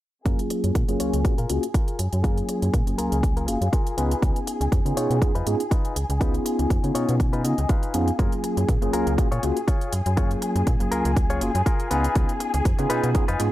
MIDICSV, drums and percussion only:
0, 0, Header, 1, 2, 480
1, 0, Start_track
1, 0, Key_signature, 6, "major"
1, 0, Tempo, 495868
1, 250, Time_signature, 4, 2, 24, 8
1, 13086, End_track
2, 0, Start_track
2, 0, Title_t, "Drums"
2, 248, Note_on_c, 9, 36, 115
2, 248, Note_on_c, 9, 42, 63
2, 345, Note_off_c, 9, 36, 0
2, 345, Note_off_c, 9, 42, 0
2, 378, Note_on_c, 9, 42, 40
2, 475, Note_off_c, 9, 42, 0
2, 487, Note_on_c, 9, 42, 89
2, 584, Note_off_c, 9, 42, 0
2, 618, Note_on_c, 9, 42, 41
2, 715, Note_off_c, 9, 42, 0
2, 728, Note_on_c, 9, 36, 98
2, 728, Note_on_c, 9, 42, 66
2, 824, Note_off_c, 9, 36, 0
2, 825, Note_off_c, 9, 42, 0
2, 857, Note_on_c, 9, 42, 39
2, 954, Note_off_c, 9, 42, 0
2, 968, Note_on_c, 9, 42, 93
2, 1064, Note_off_c, 9, 42, 0
2, 1099, Note_on_c, 9, 42, 39
2, 1195, Note_off_c, 9, 42, 0
2, 1207, Note_on_c, 9, 36, 116
2, 1207, Note_on_c, 9, 42, 63
2, 1304, Note_off_c, 9, 36, 0
2, 1304, Note_off_c, 9, 42, 0
2, 1338, Note_on_c, 9, 42, 39
2, 1435, Note_off_c, 9, 42, 0
2, 1448, Note_on_c, 9, 42, 94
2, 1544, Note_off_c, 9, 42, 0
2, 1579, Note_on_c, 9, 42, 39
2, 1676, Note_off_c, 9, 42, 0
2, 1688, Note_on_c, 9, 36, 98
2, 1688, Note_on_c, 9, 42, 66
2, 1785, Note_off_c, 9, 36, 0
2, 1785, Note_off_c, 9, 42, 0
2, 1818, Note_on_c, 9, 42, 38
2, 1915, Note_off_c, 9, 42, 0
2, 1927, Note_on_c, 9, 42, 89
2, 1929, Note_on_c, 9, 54, 95
2, 2024, Note_off_c, 9, 42, 0
2, 2025, Note_off_c, 9, 54, 0
2, 2058, Note_on_c, 9, 42, 39
2, 2155, Note_off_c, 9, 42, 0
2, 2168, Note_on_c, 9, 36, 119
2, 2168, Note_on_c, 9, 42, 60
2, 2265, Note_off_c, 9, 36, 0
2, 2265, Note_off_c, 9, 42, 0
2, 2299, Note_on_c, 9, 42, 39
2, 2396, Note_off_c, 9, 42, 0
2, 2407, Note_on_c, 9, 42, 89
2, 2504, Note_off_c, 9, 42, 0
2, 2540, Note_on_c, 9, 42, 38
2, 2637, Note_off_c, 9, 42, 0
2, 2648, Note_on_c, 9, 36, 104
2, 2649, Note_on_c, 9, 42, 63
2, 2745, Note_off_c, 9, 36, 0
2, 2746, Note_off_c, 9, 42, 0
2, 2780, Note_on_c, 9, 42, 39
2, 2877, Note_off_c, 9, 42, 0
2, 2890, Note_on_c, 9, 42, 87
2, 2987, Note_off_c, 9, 42, 0
2, 3021, Note_on_c, 9, 42, 38
2, 3118, Note_off_c, 9, 42, 0
2, 3129, Note_on_c, 9, 36, 118
2, 3132, Note_on_c, 9, 42, 64
2, 3226, Note_off_c, 9, 36, 0
2, 3229, Note_off_c, 9, 42, 0
2, 3260, Note_on_c, 9, 42, 38
2, 3357, Note_off_c, 9, 42, 0
2, 3369, Note_on_c, 9, 42, 91
2, 3372, Note_on_c, 9, 54, 86
2, 3466, Note_off_c, 9, 42, 0
2, 3469, Note_off_c, 9, 54, 0
2, 3501, Note_on_c, 9, 42, 37
2, 3598, Note_off_c, 9, 42, 0
2, 3609, Note_on_c, 9, 36, 101
2, 3611, Note_on_c, 9, 42, 66
2, 3706, Note_off_c, 9, 36, 0
2, 3707, Note_off_c, 9, 42, 0
2, 3743, Note_on_c, 9, 42, 40
2, 3840, Note_off_c, 9, 42, 0
2, 3851, Note_on_c, 9, 42, 91
2, 3948, Note_off_c, 9, 42, 0
2, 3983, Note_on_c, 9, 42, 39
2, 4080, Note_off_c, 9, 42, 0
2, 4090, Note_on_c, 9, 36, 117
2, 4092, Note_on_c, 9, 42, 58
2, 4186, Note_off_c, 9, 36, 0
2, 4189, Note_off_c, 9, 42, 0
2, 4222, Note_on_c, 9, 42, 37
2, 4319, Note_off_c, 9, 42, 0
2, 4327, Note_on_c, 9, 54, 92
2, 4331, Note_on_c, 9, 42, 85
2, 4424, Note_off_c, 9, 54, 0
2, 4427, Note_off_c, 9, 42, 0
2, 4462, Note_on_c, 9, 42, 37
2, 4559, Note_off_c, 9, 42, 0
2, 4570, Note_on_c, 9, 36, 103
2, 4572, Note_on_c, 9, 42, 63
2, 4666, Note_off_c, 9, 36, 0
2, 4669, Note_off_c, 9, 42, 0
2, 4704, Note_on_c, 9, 42, 37
2, 4801, Note_off_c, 9, 42, 0
2, 4812, Note_on_c, 9, 42, 86
2, 4909, Note_off_c, 9, 42, 0
2, 4943, Note_on_c, 9, 42, 36
2, 5040, Note_off_c, 9, 42, 0
2, 5050, Note_on_c, 9, 36, 121
2, 5052, Note_on_c, 9, 42, 61
2, 5147, Note_off_c, 9, 36, 0
2, 5149, Note_off_c, 9, 42, 0
2, 5182, Note_on_c, 9, 42, 36
2, 5279, Note_off_c, 9, 42, 0
2, 5292, Note_on_c, 9, 42, 89
2, 5388, Note_off_c, 9, 42, 0
2, 5422, Note_on_c, 9, 42, 36
2, 5519, Note_off_c, 9, 42, 0
2, 5530, Note_on_c, 9, 36, 108
2, 5532, Note_on_c, 9, 42, 63
2, 5627, Note_off_c, 9, 36, 0
2, 5629, Note_off_c, 9, 42, 0
2, 5661, Note_on_c, 9, 42, 37
2, 5757, Note_off_c, 9, 42, 0
2, 5763, Note_on_c, 9, 54, 95
2, 5772, Note_on_c, 9, 42, 84
2, 5860, Note_off_c, 9, 54, 0
2, 5869, Note_off_c, 9, 42, 0
2, 5902, Note_on_c, 9, 42, 39
2, 5999, Note_off_c, 9, 42, 0
2, 6009, Note_on_c, 9, 36, 123
2, 6011, Note_on_c, 9, 42, 60
2, 6106, Note_off_c, 9, 36, 0
2, 6108, Note_off_c, 9, 42, 0
2, 6141, Note_on_c, 9, 42, 36
2, 6238, Note_off_c, 9, 42, 0
2, 6251, Note_on_c, 9, 42, 84
2, 6348, Note_off_c, 9, 42, 0
2, 6380, Note_on_c, 9, 54, 42
2, 6381, Note_on_c, 9, 42, 36
2, 6476, Note_off_c, 9, 54, 0
2, 6478, Note_off_c, 9, 42, 0
2, 6489, Note_on_c, 9, 36, 104
2, 6490, Note_on_c, 9, 42, 63
2, 6586, Note_off_c, 9, 36, 0
2, 6587, Note_off_c, 9, 42, 0
2, 6620, Note_on_c, 9, 42, 36
2, 6716, Note_off_c, 9, 42, 0
2, 6729, Note_on_c, 9, 42, 85
2, 6826, Note_off_c, 9, 42, 0
2, 6859, Note_on_c, 9, 42, 36
2, 6956, Note_off_c, 9, 42, 0
2, 6969, Note_on_c, 9, 36, 121
2, 6969, Note_on_c, 9, 42, 59
2, 7065, Note_off_c, 9, 36, 0
2, 7066, Note_off_c, 9, 42, 0
2, 7098, Note_on_c, 9, 42, 35
2, 7195, Note_off_c, 9, 42, 0
2, 7208, Note_on_c, 9, 42, 84
2, 7209, Note_on_c, 9, 54, 93
2, 7305, Note_off_c, 9, 42, 0
2, 7306, Note_off_c, 9, 54, 0
2, 7338, Note_on_c, 9, 42, 35
2, 7435, Note_off_c, 9, 42, 0
2, 7447, Note_on_c, 9, 42, 60
2, 7448, Note_on_c, 9, 36, 103
2, 7543, Note_off_c, 9, 42, 0
2, 7545, Note_off_c, 9, 36, 0
2, 7578, Note_on_c, 9, 42, 36
2, 7674, Note_off_c, 9, 42, 0
2, 7682, Note_on_c, 9, 54, 89
2, 7686, Note_on_c, 9, 42, 84
2, 7779, Note_off_c, 9, 54, 0
2, 7783, Note_off_c, 9, 42, 0
2, 7818, Note_on_c, 9, 42, 37
2, 7818, Note_on_c, 9, 54, 37
2, 7914, Note_off_c, 9, 54, 0
2, 7915, Note_off_c, 9, 42, 0
2, 7928, Note_on_c, 9, 36, 116
2, 7929, Note_on_c, 9, 42, 59
2, 8025, Note_off_c, 9, 36, 0
2, 8025, Note_off_c, 9, 42, 0
2, 8057, Note_on_c, 9, 42, 37
2, 8154, Note_off_c, 9, 42, 0
2, 8167, Note_on_c, 9, 54, 88
2, 8168, Note_on_c, 9, 42, 87
2, 8264, Note_off_c, 9, 54, 0
2, 8265, Note_off_c, 9, 42, 0
2, 8299, Note_on_c, 9, 42, 38
2, 8303, Note_on_c, 9, 54, 37
2, 8395, Note_off_c, 9, 42, 0
2, 8399, Note_off_c, 9, 54, 0
2, 8408, Note_on_c, 9, 36, 99
2, 8408, Note_on_c, 9, 42, 63
2, 8504, Note_off_c, 9, 42, 0
2, 8505, Note_off_c, 9, 36, 0
2, 8539, Note_on_c, 9, 42, 36
2, 8636, Note_off_c, 9, 42, 0
2, 8649, Note_on_c, 9, 42, 87
2, 8746, Note_off_c, 9, 42, 0
2, 8779, Note_on_c, 9, 42, 37
2, 8876, Note_off_c, 9, 42, 0
2, 8888, Note_on_c, 9, 36, 109
2, 8889, Note_on_c, 9, 42, 61
2, 8985, Note_off_c, 9, 36, 0
2, 8986, Note_off_c, 9, 42, 0
2, 9020, Note_on_c, 9, 42, 36
2, 9117, Note_off_c, 9, 42, 0
2, 9129, Note_on_c, 9, 42, 86
2, 9129, Note_on_c, 9, 54, 86
2, 9226, Note_off_c, 9, 42, 0
2, 9226, Note_off_c, 9, 54, 0
2, 9260, Note_on_c, 9, 42, 35
2, 9357, Note_off_c, 9, 42, 0
2, 9368, Note_on_c, 9, 36, 99
2, 9369, Note_on_c, 9, 42, 62
2, 9464, Note_off_c, 9, 36, 0
2, 9466, Note_off_c, 9, 42, 0
2, 9499, Note_on_c, 9, 42, 37
2, 9596, Note_off_c, 9, 42, 0
2, 9606, Note_on_c, 9, 54, 87
2, 9608, Note_on_c, 9, 42, 86
2, 9703, Note_off_c, 9, 54, 0
2, 9705, Note_off_c, 9, 42, 0
2, 9738, Note_on_c, 9, 42, 37
2, 9835, Note_off_c, 9, 42, 0
2, 9847, Note_on_c, 9, 42, 63
2, 9848, Note_on_c, 9, 36, 114
2, 9944, Note_off_c, 9, 42, 0
2, 9945, Note_off_c, 9, 36, 0
2, 9978, Note_on_c, 9, 42, 39
2, 10075, Note_off_c, 9, 42, 0
2, 10086, Note_on_c, 9, 54, 93
2, 10087, Note_on_c, 9, 42, 91
2, 10182, Note_off_c, 9, 54, 0
2, 10184, Note_off_c, 9, 42, 0
2, 10218, Note_on_c, 9, 54, 34
2, 10219, Note_on_c, 9, 42, 39
2, 10315, Note_off_c, 9, 42, 0
2, 10315, Note_off_c, 9, 54, 0
2, 10327, Note_on_c, 9, 42, 64
2, 10328, Note_on_c, 9, 36, 94
2, 10424, Note_off_c, 9, 36, 0
2, 10424, Note_off_c, 9, 42, 0
2, 10457, Note_on_c, 9, 42, 39
2, 10459, Note_on_c, 9, 54, 23
2, 10554, Note_off_c, 9, 42, 0
2, 10556, Note_off_c, 9, 54, 0
2, 10568, Note_on_c, 9, 42, 87
2, 10573, Note_on_c, 9, 54, 77
2, 10665, Note_off_c, 9, 42, 0
2, 10670, Note_off_c, 9, 54, 0
2, 10698, Note_on_c, 9, 42, 38
2, 10795, Note_off_c, 9, 42, 0
2, 10808, Note_on_c, 9, 36, 113
2, 10809, Note_on_c, 9, 42, 65
2, 10905, Note_off_c, 9, 36, 0
2, 10905, Note_off_c, 9, 42, 0
2, 10938, Note_on_c, 9, 42, 37
2, 10945, Note_on_c, 9, 54, 26
2, 11035, Note_off_c, 9, 42, 0
2, 11042, Note_off_c, 9, 54, 0
2, 11049, Note_on_c, 9, 42, 90
2, 11053, Note_on_c, 9, 54, 86
2, 11145, Note_off_c, 9, 42, 0
2, 11149, Note_off_c, 9, 54, 0
2, 11180, Note_on_c, 9, 42, 37
2, 11277, Note_off_c, 9, 42, 0
2, 11288, Note_on_c, 9, 36, 97
2, 11289, Note_on_c, 9, 42, 65
2, 11385, Note_off_c, 9, 36, 0
2, 11386, Note_off_c, 9, 42, 0
2, 11419, Note_on_c, 9, 42, 39
2, 11516, Note_off_c, 9, 42, 0
2, 11525, Note_on_c, 9, 54, 90
2, 11528, Note_on_c, 9, 42, 88
2, 11622, Note_off_c, 9, 54, 0
2, 11625, Note_off_c, 9, 42, 0
2, 11658, Note_on_c, 9, 42, 40
2, 11755, Note_off_c, 9, 42, 0
2, 11766, Note_on_c, 9, 42, 64
2, 11768, Note_on_c, 9, 36, 106
2, 11863, Note_off_c, 9, 42, 0
2, 11865, Note_off_c, 9, 36, 0
2, 11897, Note_on_c, 9, 42, 41
2, 11906, Note_on_c, 9, 54, 26
2, 11994, Note_off_c, 9, 42, 0
2, 12002, Note_off_c, 9, 54, 0
2, 12005, Note_on_c, 9, 54, 88
2, 12007, Note_on_c, 9, 42, 90
2, 12102, Note_off_c, 9, 54, 0
2, 12104, Note_off_c, 9, 42, 0
2, 12137, Note_on_c, 9, 42, 38
2, 12138, Note_on_c, 9, 54, 37
2, 12234, Note_off_c, 9, 42, 0
2, 12234, Note_off_c, 9, 54, 0
2, 12248, Note_on_c, 9, 42, 69
2, 12249, Note_on_c, 9, 36, 98
2, 12345, Note_off_c, 9, 36, 0
2, 12345, Note_off_c, 9, 42, 0
2, 12377, Note_on_c, 9, 42, 40
2, 12380, Note_on_c, 9, 54, 27
2, 12474, Note_off_c, 9, 42, 0
2, 12477, Note_off_c, 9, 54, 0
2, 12487, Note_on_c, 9, 42, 93
2, 12490, Note_on_c, 9, 54, 87
2, 12583, Note_off_c, 9, 42, 0
2, 12587, Note_off_c, 9, 54, 0
2, 12609, Note_on_c, 9, 54, 33
2, 12618, Note_on_c, 9, 42, 39
2, 12706, Note_off_c, 9, 54, 0
2, 12715, Note_off_c, 9, 42, 0
2, 12727, Note_on_c, 9, 42, 66
2, 12729, Note_on_c, 9, 36, 107
2, 12824, Note_off_c, 9, 42, 0
2, 12826, Note_off_c, 9, 36, 0
2, 12859, Note_on_c, 9, 42, 38
2, 12863, Note_on_c, 9, 54, 23
2, 12955, Note_off_c, 9, 42, 0
2, 12960, Note_off_c, 9, 54, 0
2, 12966, Note_on_c, 9, 54, 85
2, 12968, Note_on_c, 9, 42, 90
2, 13063, Note_off_c, 9, 54, 0
2, 13065, Note_off_c, 9, 42, 0
2, 13086, End_track
0, 0, End_of_file